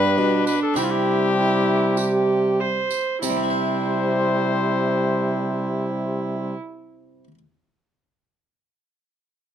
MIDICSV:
0, 0, Header, 1, 7, 480
1, 0, Start_track
1, 0, Key_signature, 0, "major"
1, 0, Tempo, 589971
1, 619, Time_signature, 4, 2, 24, 8
1, 1107, Tempo, 614754
1, 2067, Tempo, 636267
1, 7312, End_track
2, 0, Start_track
2, 0, Title_t, "Cornet"
2, 0, Program_c, 0, 56
2, 0, Note_on_c, 0, 71, 127
2, 367, Note_off_c, 0, 71, 0
2, 378, Note_on_c, 0, 71, 111
2, 496, Note_off_c, 0, 71, 0
2, 509, Note_on_c, 0, 69, 106
2, 618, Note_off_c, 0, 69, 0
2, 623, Note_on_c, 0, 67, 102
2, 682, Note_on_c, 0, 65, 89
2, 694, Note_off_c, 0, 67, 0
2, 738, Note_on_c, 0, 67, 123
2, 750, Note_off_c, 0, 65, 0
2, 2304, Note_off_c, 0, 67, 0
2, 2538, Note_on_c, 0, 72, 106
2, 5044, Note_off_c, 0, 72, 0
2, 7312, End_track
3, 0, Start_track
3, 0, Title_t, "Viola"
3, 0, Program_c, 1, 41
3, 0, Note_on_c, 1, 62, 86
3, 631, Note_on_c, 1, 64, 81
3, 643, Note_off_c, 1, 62, 0
3, 1064, Note_off_c, 1, 64, 0
3, 1118, Note_on_c, 1, 64, 90
3, 1591, Note_on_c, 1, 67, 91
3, 1603, Note_off_c, 1, 64, 0
3, 2079, Note_on_c, 1, 72, 87
3, 2090, Note_off_c, 1, 67, 0
3, 2548, Note_off_c, 1, 72, 0
3, 2553, Note_on_c, 1, 64, 76
3, 5051, Note_off_c, 1, 64, 0
3, 7312, End_track
4, 0, Start_track
4, 0, Title_t, "Harpsichord"
4, 0, Program_c, 2, 6
4, 0, Note_on_c, 2, 43, 77
4, 0, Note_on_c, 2, 59, 68
4, 0, Note_on_c, 2, 62, 67
4, 111, Note_off_c, 2, 43, 0
4, 148, Note_on_c, 2, 47, 69
4, 423, Note_off_c, 2, 47, 0
4, 585, Note_off_c, 2, 59, 0
4, 589, Note_off_c, 2, 62, 0
4, 603, Note_on_c, 2, 60, 60
4, 613, Note_on_c, 2, 64, 59
4, 623, Note_on_c, 2, 48, 64
4, 2278, Note_off_c, 2, 48, 0
4, 2509, Note_off_c, 2, 60, 0
4, 2514, Note_off_c, 2, 64, 0
4, 2544, Note_on_c, 2, 48, 66
4, 2600, Note_on_c, 2, 55, 67
4, 2653, Note_on_c, 2, 60, 66
4, 2703, Note_on_c, 2, 64, 65
4, 2756, Note_on_c, 2, 72, 64
4, 5575, Note_off_c, 2, 48, 0
4, 5602, Note_off_c, 2, 55, 0
4, 5629, Note_off_c, 2, 60, 0
4, 5654, Note_off_c, 2, 64, 0
4, 5680, Note_off_c, 2, 72, 0
4, 7312, End_track
5, 0, Start_track
5, 0, Title_t, "Trombone"
5, 0, Program_c, 3, 57
5, 0, Note_on_c, 3, 55, 86
5, 363, Note_off_c, 3, 55, 0
5, 626, Note_on_c, 3, 55, 82
5, 2279, Note_off_c, 3, 55, 0
5, 2544, Note_on_c, 3, 55, 75
5, 5046, Note_off_c, 3, 55, 0
5, 7312, End_track
6, 0, Start_track
6, 0, Title_t, "Bassoon"
6, 0, Program_c, 4, 70
6, 0, Note_on_c, 4, 43, 95
6, 145, Note_on_c, 4, 47, 80
6, 158, Note_off_c, 4, 43, 0
6, 452, Note_off_c, 4, 47, 0
6, 617, Note_on_c, 4, 48, 86
6, 2275, Note_off_c, 4, 48, 0
6, 2549, Note_on_c, 4, 48, 86
6, 5049, Note_off_c, 4, 48, 0
6, 7312, End_track
7, 0, Start_track
7, 0, Title_t, "Drums"
7, 383, Note_on_c, 9, 54, 57
7, 464, Note_off_c, 9, 54, 0
7, 620, Note_on_c, 9, 54, 80
7, 701, Note_off_c, 9, 54, 0
7, 1583, Note_on_c, 9, 54, 52
7, 1661, Note_off_c, 9, 54, 0
7, 2305, Note_on_c, 9, 54, 54
7, 2381, Note_off_c, 9, 54, 0
7, 2547, Note_on_c, 9, 54, 91
7, 2622, Note_off_c, 9, 54, 0
7, 7312, End_track
0, 0, End_of_file